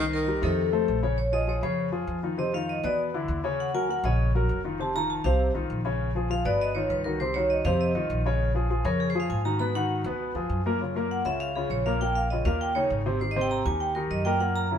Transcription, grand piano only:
0.00 0.23 D#3 medium
0.00 0.23 D#4 medium
0.00 0.23 D#5 medium
0.27 0.40 G3 medium
0.27 0.41 G4 medium
0.27 0.41 A#4 medium
0.42 0.67 D#3 medium
0.42 0.67 D#4 medium
0.42 0.67 D#5 medium
0.72 0.97 A3 medium
0.72 0.98 A4 medium
0.72 0.98 C5 medium
1.03 1.15 C#3 medium
1.03 1.16 C#4 medium
1.03 1.16 C#5 medium
1.32 1.45 F3 medium
1.32 1.45 F4 medium
1.32 1.46 G#4 medium
1.47 1.60 F3 medium
1.47 1.60 F4 medium
1.47 1.60 G#4 medium
1.63 1.88 C#3 medium
1.63 1.88 C#4 medium
1.63 1.88 C#5 medium
1.92 2.17 F3 medium
1.92 2.17 F4 medium
1.92 2.18 G#4 medium
2.23 2.36 D#3 medium
2.23 2.36 D#4 medium
2.23 2.36 F4 medium
2.38 2.51 C3 medium
2.38 2.51 C4 medium
2.38 2.51 C5 medium
2.53 2.78 D#3 medium
2.53 2.78 D#4 medium
2.53 2.79 F4 medium
2.84 3.08 B2 medium
2.84 3.09 B3 medium
2.84 3.09 B4 medium
3.14 3.39 D3 medium
3.14 3.39 D4 medium
3.14 3.39 E4 medium
3.44 3.68 C#3 medium
3.44 3.69 C#4 medium
3.44 3.69 C#5 medium
3.74 3.86 F#3 medium
3.74 3.87 F#4 medium
3.74 3.87 A#4 medium
3.89 4.01 F#3 medium
3.89 4.02 F#4 medium
3.89 4.02 A#4 medium
4.04 4.29 C#3 medium
4.04 4.29 C#4 medium
4.04 4.29 C#5 medium
4.35 4.59 F#3 medium
4.35 4.60 F#4 medium
4.35 4.60 A#4 medium
4.65 4.77 D#3 medium
4.65 4.77 D#4 medium
4.65 4.77 F4 medium
4.80 4.92 C3 medium
4.80 4.92 C4 medium
4.80 4.92 C5 medium
4.95 5.19 D#3 medium
4.95 5.20 D#4 medium
4.95 5.20 F4 medium
5.25 5.49 C3 medium
5.25 5.50 C4 medium
5.25 5.50 C5 medium
5.54 5.79 D#3 medium
5.54 5.79 D#4 medium
5.54 5.80 F4 medium
5.85 6.09 C#3 medium
5.85 6.09 C#4 medium
5.85 6.10 C#5 medium
6.15 6.27 F3 medium
6.15 6.28 F4 medium
6.15 6.28 G#4 medium
6.30 6.42 F3 medium
6.30 6.42 F4 medium
6.30 6.43 G#4 medium
6.45 6.70 B2 medium
6.45 6.70 B3 medium
6.45 6.70 B4 medium
6.75 7.00 D#3 medium
6.75 7.00 D#4 medium
6.75 7.00 F4 medium
7.05 7.17 D#3 medium
7.05 7.18 D#4 medium
7.05 7.18 F#4 medium
7.21 7.33 C3 medium
7.21 7.33 C4 medium
7.21 7.33 C5 medium
7.36 7.60 D#3 medium
7.36 7.60 D#4 medium
7.36 7.60 F#4 medium
7.66 7.90 C3 medium
7.66 7.90 C4 medium
7.66 7.90 C5 medium
7.95 8.20 D#3 medium
7.95 8.20 D#4 medium
7.95 8.20 F4 medium
8.26 8.50 C#3 medium
8.26 8.50 C#4 medium
8.26 8.50 C#5 medium
8.54 8.67 F3 medium
8.54 8.67 F4 medium
8.54 8.68 G#4 medium
8.70 8.82 F3 medium
8.70 8.82 F4 medium
8.70 8.83 G#4 medium
8.85 9.10 C#3 medium
8.85 9.10 C#4 medium
8.85 9.10 C#5 medium
9.15 9.40 F3 medium
9.15 9.40 F4 medium
9.15 9.40 G#4 medium
9.45 9.57 D#3 medium
9.45 9.58 D#4 medium
9.45 9.58 F#4 medium
9.60 9.72 B2 medium
9.60 9.73 B3 medium
9.60 9.73 B4 medium
9.75 10.00 D#3 medium
9.75 10.00 D#4 medium
9.75 10.00 F#4 medium
10.06 10.30 B2 medium
10.06 10.30 B3 medium
10.06 10.30 B4 medium
10.35 10.60 F3 medium
10.35 10.60 F4 medium
10.35 10.60 G#4 medium
10.66 10.78 A#2 medium
10.66 10.78 A#3 medium
10.66 10.78 A#4 medium
10.81 10.93 C#3 medium
10.81 10.93 C#4 medium
10.81 10.93 F4 medium
10.95 11.20 A#2 medium
10.95 11.21 A#3 medium
10.95 11.21 A#4 medium
11.25 11.50 C#3 medium
11.25 11.50 C#4 medium
11.25 11.50 F4 medium
11.56 11.81 C#3 medium
11.56 11.81 C#4 medium
11.56 11.81 F4 medium
11.86 11.98 A#2 medium
11.86 11.98 A#3 medium
11.86 11.99 A#4 medium
12.02 12.26 A#2 medium
12.02 12.26 A#3 medium
12.02 12.26 A#4 medium
12.32 12.44 C#3 medium
12.32 12.44 C#4 medium
12.32 12.44 F4 medium
12.46 12.70 A#2 medium
12.46 12.71 A#3 medium
12.46 12.71 A#4 medium
12.76 13.00 C#3 medium
12.76 13.00 C#4 medium
12.76 13.01 D#4 medium
13.06 13.18 C3 medium
13.06 13.18 C4 medium
13.06 13.19 C5 medium
13.21 13.33 D#3 medium
13.21 13.33 D#4 medium
13.21 13.34 G4 medium
13.36 13.61 C3 medium
13.36 13.61 C4 medium
13.36 13.61 C5 medium
13.66 13.91 D#3 medium
13.66 13.91 D#4 medium
13.66 13.91 G4 medium
13.96 14.21 D#3 medium
13.96 14.21 D#4 medium
13.96 14.21 G4 medium
14.25 14.38 A#2 medium
14.25 14.38 A#3 medium
14.25 14.39 A#4 medium
14.41 14.66 A#2 medium
14.41 14.66 A#3 medium
14.41 14.66 A#4 medium
14.71 14.78 C#3 medium
14.71 14.78 C#4 medium
14.71 14.78 E4 medium

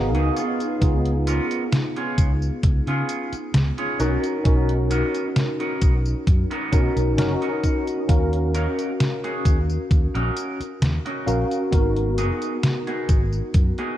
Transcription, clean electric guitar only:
0.15 0.35 B3 medium
0.15 0.36 D#4 medium
0.15 0.36 F#4 medium
0.15 0.35 G#4 loud
0.36 1.10 B3 medium
0.36 1.10 C#4 medium
0.36 1.10 F4 medium
0.36 1.10 G#4 loud
1.27 1.62 B3 loud
1.27 1.62 C#4 medium
1.27 1.62 F4 loud
1.27 1.62 A#4 loud
1.96 2.30 B3 medium
1.96 2.30 C#4 medium
1.96 2.30 F4 medium
1.96 2.30 G#4 loud
2.64 muted clean electric guitar stroke soft
2.88 3.33 B3 medium
2.88 3.33 C#4 loud
2.88 3.33 F4 loud
2.88 3.33 G#4 loud
3.78 3.98 B3 medium
3.78 4.00 C#4 medium
3.78 4.00 F4 medium
3.78 4.00 G#4 loud
3.99 4.73 B3 medium
3.99 4.73 D#4 medium
3.99 4.73 F#4 medium
3.99 4.74 A#4 loud
4.91 5.25 B3 loud
4.91 5.25 D#4 medium
4.91 5.25 F#4 loud
4.91 5.26 A#4 loud
5.60 5.94 B3 medium
5.60 5.94 D#4 medium
5.60 5.94 F#4 medium
5.60 5.94 A#4 loud
6.27 muted clean electric guitar stroke soft
6.51 6.96 B3 loud
6.51 6.96 D#4 medium
6.51 6.96 F#4 medium
6.51 6.97 A#4 loud
7.41 7.98 B3 medium
7.41 7.98 D#4 medium
7.41 7.98 F#4 medium
7.41 7.98 A#4 medium
8.55 8.89 C#4 loud
8.55 8.89 D#4 medium
8.55 8.89 F#4 loud
8.55 8.89 A#4 loud
9.24 9.57 C#4 medium
9.24 9.57 D#4 medium
9.24 9.57 F#4 medium
9.24 9.58 G#4 loud
9.91 muted clean electric guitar stroke soft
10.15 10.60 C#4 loud
10.15 10.60 D#4 medium
10.15 10.60 F#4 loud
10.15 10.60 A#4 loud
11.06 11.62 C#4 medium
11.06 11.62 D#4 medium
11.06 11.62 F#4 medium
11.06 11.62 A#4 loud
12.18 12.53 B3 loud
12.18 12.53 D#4 medium
12.18 12.53 F#4 loud
12.18 12.53 G#4 loud
12.87 13.21 B3 medium
12.87 13.21 D#4 medium
12.87 13.21 F#4 medium
12.87 13.21 G#4 medium
13.55 muted clean electric guitar stroke soft
13.79 13.97 B3 medium
13.79 13.97 D#4 loud
13.79 13.97 F#4 loud
13.79 13.97 G#4 loud

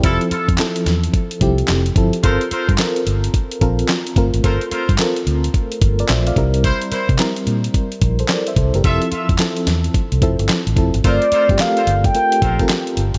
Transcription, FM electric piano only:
0.04 0.45 F3 medium
0.04 0.45 C4 medium
0.04 0.46 E4 medium
0.04 0.12 G4 medium
0.11 0.49 A4 medium
0.59 1.17 F3 medium
0.59 1.17 C4 medium
0.59 1.18 E4 medium
0.59 1.18 A4 medium
1.41 1.83 F3 medium
1.41 1.83 C4 medium
1.41 1.83 E4 medium
1.41 1.83 G4 loud
1.96 2.18 F3 medium
1.96 2.18 C4 medium
1.96 2.18 E4 medium
1.96 2.18 A4 medium
2.24 2.66 C4 medium
2.24 2.66 F4 medium
2.24 2.65 A4 medium
2.24 2.66 A#4 medium
2.79 3.38 C4 medium
2.79 3.38 F4 medium
2.79 3.37 A4 medium
2.79 3.38 A#4 loud
3.61 4.03 C4 medium
3.61 4.03 F4 medium
3.61 4.03 A4 medium
3.61 4.03 A#4 loud
4.17 4.38 A3 medium
4.17 4.38 C4 medium
4.17 4.38 F4 medium
4.17 4.39 A#4 medium
4.44 4.86 C4 medium
4.44 4.86 F4 medium
4.44 4.86 A4 medium
4.44 4.86 A#4 medium
4.99 5.58 C4 medium
4.99 5.58 F4 medium
4.99 5.58 A4 medium
4.99 5.55 A#4 medium
6.00 6.09 A#4 medium
6.00 6.09 D5 medium
6.10 6.26 C5 medium
6.10 6.26 E5 medium
6.27 6.53 D5 medium
6.27 6.53 F5 medium
6.37 7.06 G3 medium
6.37 7.06 C4 medium
6.37 7.06 E4 medium
6.37 7.06 A#4 loud
7.19 7.78 G3 medium
7.19 7.78 C4 medium
7.19 7.78 E4 medium
7.19 7.78 A#4 loud
8.20 8.29 A4 medium
8.20 8.29 C5 medium
8.30 8.47 A#4 medium
8.30 8.46 D5 medium
8.48 8.57 C5 medium
8.48 8.57 E5 medium
8.58 8.74 A4 medium
8.58 8.74 C5 medium
8.75 9.01 G4 medium
8.75 9.01 A#4 medium
8.84 9.26 F3 medium
8.84 9.26 C4 medium
8.84 9.26 E4 medium
8.84 9.26 A4 medium
9.39 9.98 F3 medium
9.39 9.98 C4 medium
9.39 9.98 E4 medium
9.39 9.98 A4 medium
10.22 10.63 F3 medium
10.22 10.64 C4 medium
10.22 10.64 E4 medium
10.22 10.64 A4 medium
10.77 10.99 F3 medium
10.77 10.99 C4 medium
10.77 10.99 E4 medium
10.77 10.99 A4 medium
11.05 11.34 A3 medium
11.05 11.34 C4 medium
11.05 11.34 F4 medium
11.05 11.35 A#4 medium
11.50 11.57 A3 medium
11.50 11.57 C4 medium
11.50 11.57 F4 medium
11.50 11.57 G4 medium
11.60 12.01 C4 medium
11.60 12.01 F4 medium
11.60 12.01 A4 medium
11.60 12.02 A#4 medium
12.15 12.44 A3 medium
12.15 12.44 C4 medium
12.15 12.44 F4 medium
12.15 12.44 A#4 medium
12.60 13.06 C4 medium
12.60 13.06 F4 medium
12.60 13.06 A4 medium
12.60 13.07 A#4 medium

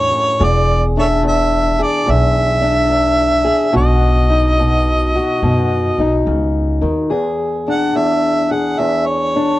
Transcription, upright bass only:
0.00 0.11 E2 medium
0.40 1.80 E1 loud
2.08 3.48 B1 medium
3.76 5.16 B1 medium
5.42 5.90 F#2 medium
5.98 6.24 B1 medium
6.27 6.79 C#2 medium
6.82 7.08 D#2 medium

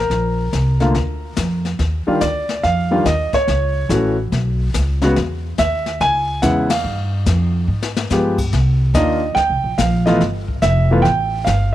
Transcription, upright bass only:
0.10 0.51 A#1 medium
0.53 0.94 C2 medium
0.94 1.36 D2 medium
1.37 1.78 F2 medium
1.79 2.05 D#2 medium
2.07 muted upright bass stroke soft
2.21 2.62 D2 medium
2.64 3.04 F2 medium
3.05 3.31 D#2 medium
3.33 muted upright bass stroke soft
3.48 3.89 C#2 medium
3.89 4.30 A1 medium
4.32 4.73 B1 medium
4.74 5.15 C#2 medium
5.16 5.57 E2 medium
5.58 5.99 D#2 medium
6.00 6.41 C#2 medium
6.43 6.83 E2 medium
6.84 7.25 G2 medium
7.26 7.67 F2 medium
7.68 8.09 G#2 medium
8.10 8.51 G2 medium
8.52 8.93 C2 medium
8.94 9.35 D#2 medium
9.36 9.51 D2 medium
9.50 9.63 C2 medium
9.64 9.77 A#1 medium
9.78 10.19 A#1 medium
10.21 10.61 G1 medium
10.62 11.03 F1 medium
11.05 11.46 A1 medium
11.47 11.75 G1 medium

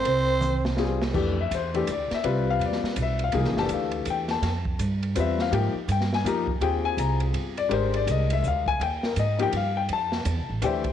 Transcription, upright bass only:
0.05 1.10 C2 medium
1.15 1.50 F2 medium
1.51 1.86 E2 medium
1.88 2.09 D2 medium
2.11 muted upright bass stroke soft
2.24 2.59 C2 medium
2.59 2.81 E2 medium
2.82 muted upright bass stroke soft
2.96 3.32 B1 medium
3.33 3.45 C2 medium
3.45 3.56 A1 medium
3.57 3.69 F1 medium
3.69 4.05 D2 medium
4.06 4.41 E2 medium
4.42 4.78 F2 medium
4.79 5.14 G2 medium
5.16 5.51 E2 medium
5.52 5.73 G#2 medium
5.74 muted upright bass stroke soft
5.88 6.23 G2 loud
6.24 6.60 F2 medium
6.60 6.96 D#2 medium
6.97 7.33 C2 medium
7.34 7.69 G1 medium
7.71 8.06 G#1 medium
8.07 8.42 C2 medium
8.43 8.79 D2 medium
8.80 9.15 D#2 medium
9.16 9.52 G#2 medium
9.53 9.88 G2 medium
9.89 10.24 F2 medium
10.25 10.39 E2 loud
10.37 10.49 C2 medium
10.50 10.61 A1 medium
10.62 10.93 D2 medium

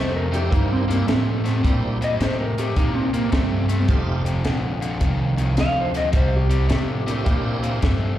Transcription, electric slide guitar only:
0.00 0.15 C5 medium
0.16 0.34 A#4 medium
0.35 0.52 G4 medium
0.54 0.71 D#4 medium
0.73 0.90 C4 medium
0.92 1.09 A#3 medium
1.10 1.64 C4 medium
2.04 2.21 D#5 medium
2.23 2.40 C5 medium
2.41 2.58 A#4 medium
2.59 2.77 G4 medium
2.77 2.95 D#4 medium
2.95 3.13 C4 medium
3.14 3.32 A#3 medium
3.33 3.87 C4 medium
5.61 5.77 F5 loud
5.81 5.97 C5 medium
5.97 6.14 D#5 medium
6.16 6.33 C5 medium
6.36 7.44 G4 medium

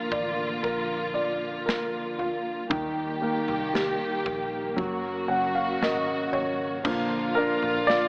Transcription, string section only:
0.00 2.66 D3 medium
0.00 2.66 F3 medium
0.00 2.67 A#3 medium
0.00 2.66 F4 medium
2.70 4.76 D#3 medium
2.70 4.76 G3 medium
2.70 6.80 A#3 medium
2.70 4.76 G4 medium
4.78 6.83 C#3 medium
4.78 6.83 F#3 medium
4.78 6.83 F#4 medium
6.85 8.08 D3 medium
6.85 8.08 F3 medium
6.85 8.08 A#3 medium
6.85 8.08 F4 medium

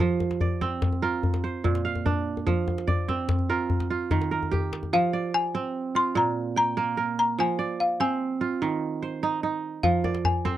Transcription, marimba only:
4.94 5.35 F5 loud
5.34 5.98 G#5 medium
5.96 6.17 C6 medium
6.17 6.56 A#5 medium
6.58 6.95 A#5 loud
7.19 7.28 A#5 medium
7.40 7.81 G#5 loud
7.80 7.89 F5 medium
8.01 8.58 G#5 medium
9.83 10.26 F5 medium
10.25 10.57 G#5 medium

